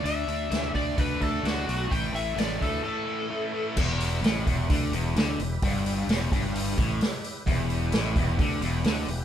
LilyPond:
<<
  \new Staff \with { instrumentName = "Electric slide guitar" } { \time 4/4 \key e \minor \tempo 4 = 130 e''4. d''8 b'8 a'8 fis'4 | g''8 e''8 d''8 a'8 a'2 | r1 | r1 |
r1 | }
  \new Staff \with { instrumentName = "Tonewheel organ" } { \time 4/4 \key e \minor r1 | r1 | <e' g' b'>1~ | <e' g' b'>1 |
<e' g' b'>1 | }
  \new Staff \with { instrumentName = "Distorted electric guitar" } { \clef bass \time 4/4 \key e \minor <d a d'>8 <d a d'>8 <d a d'>8 <d a d'>8 <d a d'>8 <d a d'>8 <d a d'>8 <d a d'>8 | <a, e a>8 <a, e a>8 <a, e a>8 <a, e a>8 <a, e a>8 <a, e a>8 <a, e a>8 <a, e a>8 | e,4 a,8 e,8 d8 e,8 d8 e,8 | g,4 e,8 g,4 a,8 r4 |
e,4 a,8 e,8 d8 e,8 d8 e,8 | }
  \new Staff \with { instrumentName = "Fingered electric bass" } { \clef bass \time 4/4 \key e \minor d,8 d,8 d,8 d,8 d,8 d,8 d,8 b,,8 | a,,8 a,,8 a,,8 d,8 r2 | e,,4 a,,8 e,,8 d,8 e,,8 d,8 e,,8 | g,,4 e,,8 g,,4 a,,8 r4 |
e,,4 a,,8 e,,8 d,8 e,,8 d,8 e,,8 | }
  \new DrumStaff \with { instrumentName = "Drums" } \drummode { \time 4/4 hho8 hho8 <hho sn>8 <hho bd>8 <hho bd>8 <hho bd>8 <hho sn>8 hho8 | <hho bd>8 hho8 <hho sn>8 <hho bd>8 r4 r4 | <cymc bd>8 hho8 <hho sn>8 <hho bd>8 <hho bd>8 hho8 <hho sn>8 hho8 | <hho bd>8 hho8 <hho sn>8 <hho bd>8 hho8 <hho bd>8 <hho sn>8 hho8 |
<hho bd>8 hho8 <hho sn>8 <hho bd>8 <hho bd>8 hho8 <hho sn>8 hho8 | }
>>